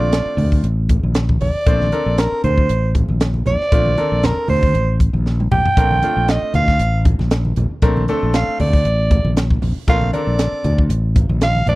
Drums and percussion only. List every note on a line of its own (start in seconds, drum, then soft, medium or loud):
0.12 snare loud
0.12 closed hi-hat medium
0.38 open hi-hat medium
0.38 low conga medium
0.52 kick medium
0.64 closed hi-hat medium
0.89 kick medium
0.89 closed hi-hat medium
0.89 low conga medium
1.03 high conga medium
1.15 snare loud
1.15 closed hi-hat medium
1.29 kick medium
1.29 high conga medium
1.41 open hi-hat medium
1.41 low conga medium
1.66 kick loud
1.66 closed hi-hat medium
1.81 snare soft
1.81 high conga medium
1.92 closed hi-hat medium
1.92 high conga medium
2.18 snare loud
2.18 closed hi-hat medium
2.44 closed hi-hat medium
2.44 low conga medium
2.58 kick medium
2.69 closed hi-hat medium
2.95 kick medium
2.95 closed hi-hat medium
2.95 low conga medium
3.09 high conga medium
3.20 snare loud
3.20 closed hi-hat medium
3.34 high conga medium
3.46 closed hi-hat medium
3.46 low conga medium
3.61 snare soft
3.72 kick loud
3.72 closed hi-hat medium
3.86 high conga medium
3.98 closed hi-hat medium
3.98 high conga medium
4.23 snare loud
4.23 closed hi-hat medium
4.23 low conga medium
4.48 open hi-hat medium
4.48 low conga medium
4.62 kick medium
4.62 high conga medium
4.75 closed hi-hat medium
5.00 kick medium
5.00 closed hi-hat medium
5.14 high conga medium
5.26 snare medium
5.40 high tom medium
5.51 mid tom medium
5.51 low conga medium
5.66 floor tom medium
5.77 kick loud
5.77 closed hi-hat medium
5.91 high conga medium
6.03 closed hi-hat medium
6.03 high conga medium
6.28 snare loud
6.28 closed hi-hat medium
6.54 closed hi-hat medium
6.54 low conga medium
6.68 kick medium
6.68 snare soft
6.79 closed hi-hat medium
7.05 kick medium
7.05 closed hi-hat medium
7.05 low conga medium
7.19 snare soft
7.19 high conga medium
7.31 snare loud
7.31 closed hi-hat medium
7.45 high conga medium
7.56 closed hi-hat medium
7.56 low conga medium
7.82 kick medium
7.82 closed hi-hat medium
7.97 high conga medium
8.08 closed hi-hat medium
8.08 high conga medium
8.34 snare loud
8.34 closed hi-hat medium
8.59 open hi-hat medium
8.59 low conga medium
8.73 kick medium
8.85 closed hi-hat medium
9.11 kick medium
9.11 closed hi-hat medium
9.11 low conga medium
9.25 high conga medium
9.37 snare loud
9.37 closed hi-hat medium
9.50 kick medium
9.50 high conga medium
9.62 open hi-hat medium
9.62 low conga medium
9.88 kick loud
9.88 closed hi-hat medium
10.02 high conga medium
10.13 closed hi-hat medium
10.13 high conga medium
10.39 snare loud
10.39 closed hi-hat medium
10.64 closed hi-hat medium
10.64 low conga medium
10.78 kick medium
10.90 closed hi-hat medium
11.16 kick medium
11.16 closed hi-hat medium
11.16 low conga medium
11.29 high conga medium
11.41 snare loud
11.41 closed hi-hat medium
11.55 high conga medium
11.67 closed hi-hat medium
11.67 low conga medium